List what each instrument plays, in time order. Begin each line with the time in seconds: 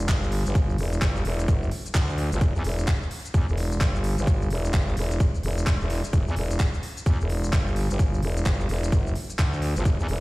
0.09 fm bass G1, kick, clap, closed hi-hat, shaker
0.23 shaker
0.32 open hi-hat
0.46 fm bass G1, closed hi-hat, shaker
0.55 kick, closed hi-hat, shaker
0.70 shaker
0.78 fm bass E1, open hi-hat
0.93 closed hi-hat, shaker
1.02 fm bass G1, kick, clap, shaker
1.16 shaker
1.25 fm bass E1, open hi-hat
1.39 closed hi-hat, shaker
1.48 fm bass F#1, kick, closed hi-hat, shaker
1.63 shaker
1.71 open hi-hat
1.86 closed hi-hat, shaker
1.95 fm bass D2, kick, clap, closed hi-hat, shaker
2.09 shaker
2.18 open hi-hat
2.32 fm bass G1, closed hi-hat, shaker
2.41 fm bass E1, kick, closed hi-hat, shaker
2.55 fm bass E2, shaker
2.64 fm bass E1, open hi-hat
2.79 closed hi-hat, shaker
2.88 kick, clap, closed hi-hat, shaker
3.02 shaker
3.11 open hi-hat
3.25 closed hi-hat, shaker
3.34 fm bass E2, kick, closed hi-hat, shaker
3.48 fm bass E1, shaker
3.57 open hi-hat
3.72 closed hi-hat, shaker
3.81 fm bass G1, kick, clap, closed hi-hat, shaker
3.95 shaker
4.04 open hi-hat
4.18 fm bass G1, closed hi-hat, shaker
4.27 kick, closed hi-hat, shaker
4.42 shaker
4.50 fm bass E1, open hi-hat
4.65 closed hi-hat, shaker
4.74 fm bass G1, kick, clap, closed hi-hat, shaker
4.88 shaker
4.97 fm bass E1, open hi-hat
5.11 closed hi-hat, shaker
5.20 kick, closed hi-hat, shaker
5.35 shaker
5.43 fm bass E1, open hi-hat
5.58 closed hi-hat, shaker
5.67 kick, clap, closed hi-hat, shaker
5.81 fm bass E1, shaker
5.90 open hi-hat
6.04 closed hi-hat, shaker
6.13 fm bass E1, kick, closed hi-hat, shaker
6.27 fm bass E2, shaker
6.36 fm bass E1, open hi-hat
6.51 closed hi-hat, shaker
6.60 kick, clap, closed hi-hat, shaker
6.74 shaker
6.83 open hi-hat
6.97 closed hi-hat, shaker
7.06 fm bass E2, kick, closed hi-hat, shaker
7.20 fm bass E1, shaker
7.29 open hi-hat
7.44 closed hi-hat, shaker
7.53 fm bass G1, kick, clap, closed hi-hat, shaker
7.67 shaker
7.76 open hi-hat
7.90 fm bass G1, closed hi-hat, shaker
7.99 kick, closed hi-hat, shaker
8.14 shaker
8.22 fm bass E1, open hi-hat
8.37 closed hi-hat, shaker
8.46 fm bass G1, kick, clap, closed hi-hat, shaker
8.60 shaker
8.69 fm bass E1, open hi-hat
8.83 closed hi-hat, shaker
8.92 fm bass F#1, kick, closed hi-hat, shaker
9.07 shaker
9.15 open hi-hat
9.30 closed hi-hat, shaker
9.39 fm bass D2, kick, clap, closed hi-hat, shaker
9.53 shaker
9.62 open hi-hat
9.76 fm bass G1, closed hi-hat, shaker
9.85 fm bass E1, kick, closed hi-hat, shaker
10.00 fm bass E2, shaker
10.08 fm bass E1, open hi-hat